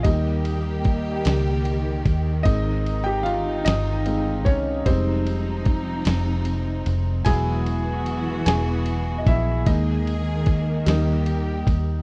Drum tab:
RD |xxxxxx|xxxxxx|xxxxxx|xxxxxx|
SD |---o--|---o--|---o--|---o--|
BD |o-o--o|o----o|o-o---|o----o|

RD |xxxxxx|
SD |---o--|
BD |o-o--o|